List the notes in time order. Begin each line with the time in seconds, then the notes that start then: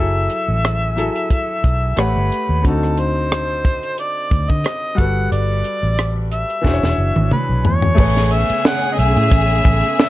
Already playing: F#1 F#3 E4 G#4 E5
0.00 A4
0.30 closed hi-hat
0.48 A1
0.65 cross-stick, closed hi-hat
0.96 F#3 E4 G#4 A4, closed hi-hat
1.16 closed hi-hat
1.31 kick, closed hi-hat
1.64 B1, kick, closed hi-hat
1.96 A1 A3 G4 B4 C#5 F#5, cross-stick, closed hi-hat
2.16 G1
2.32 closed hi-hat
2.49 D#2
2.62 D2 D3 C4 F#4, kick, closed hi-hat
2.67 D#4 A4
2.83 cross-stick
2.98 C5, closed hi-hat
3.32 cross-stick, closed hi-hat
3.65 kick, closed hi-hat
3.83 closed hi-hat
3.98 D5, closed hi-hat
4.31 D2, kick, closed hi-hat
4.50 D3 D#5, kick
4.64 cross-stick, closed hi-hat
4.95 G1 G3 F#4 A4 F#5, kick, closed hi-hat
5.00 B4
5.32 G1 D5, closed hi-hat
5.64 closed hi-hat
5.83 A1
5.99 cross-stick, closed hi-hat
6.32 E5, closed hi-hat
6.50 closed hi-hat
6.61 E1 E3 D4 F#4, kick, snare
6.66 G#4 C5
6.73 C#5
6.83 E1, snare
6.98 F#1
7.16 G#1, high tom
7.31 B4, muted fingered electric bass stroke, mid tom
7.49 B1
7.65 E2 C#5, floor tom
7.82 floor tom
7.95 A1 C#3 A3 B3 G#4 B4 G#5, kick, crash
8.00 C#5
8.16 snare, closed hi-hat
8.31 E5, closed hi-hat
8.50 muted fingered electric bass stroke, closed hi-hat
8.65 F#5 G#5, snare
8.82 closed hi-hat
8.93 D#5
8.98 B1 E5, closed hi-hat
9.16 A2, closed hi-hat
9.31 A1, kick, closed hi-hat
9.50 closed hi-hat
9.65 A1, kick, closed hi-hat
9.84 closed hi-hat
9.99 snare